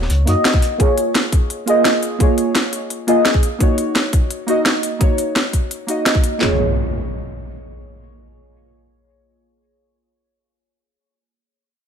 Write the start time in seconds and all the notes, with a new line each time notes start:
Already playing: A#3 D#4 F#4 C#5 D#5
0.02 snare
0.10 C#2, closed hi-hat
0.25 F#2 A#3 D#4 F#4 D#5, closed hi-hat
0.45 snare, closed hi-hat
0.53 kick, snare
0.62 closed hi-hat
0.78 A#3 F4 G#4 C#5, kick, closed hi-hat
0.98 closed hi-hat
1.15 snare, closed hi-hat
1.32 kick, closed hi-hat
1.50 closed hi-hat
1.66 A#3 F4 G#4 D#5, closed hi-hat
1.85 snare, closed hi-hat
2.03 closed hi-hat
2.18 A#3 F4 G#4 C#5, kick, closed hi-hat
2.38 closed hi-hat
2.55 snare, closed hi-hat
2.73 closed hi-hat
2.90 closed hi-hat
3.07 A#3 F4 G#4 D#5, closed hi-hat
3.25 snare, closed hi-hat
3.34 kick
3.43 closed hi-hat
3.58 A#3 D#4 F#4 C#5, kick, closed hi-hat
3.78 closed hi-hat
3.95 snare, closed hi-hat
4.13 kick, closed hi-hat
4.31 closed hi-hat
4.46 A#3 D#4 F#4 D#5, closed hi-hat
4.66 snare, closed hi-hat
4.83 closed hi-hat
4.99 A#3 D#4 F#4 C#5, kick, closed hi-hat
5.18 closed hi-hat
5.36 snare, closed hi-hat
5.53 kick, closed hi-hat
5.71 closed hi-hat
5.87 A#3 D#4 F#4 D#5, closed hi-hat
6.06 snare, closed hi-hat
6.15 kick
6.24 closed hi-hat
6.38 A#3 F4 G#4, snare, clap, impact
6.44 C#5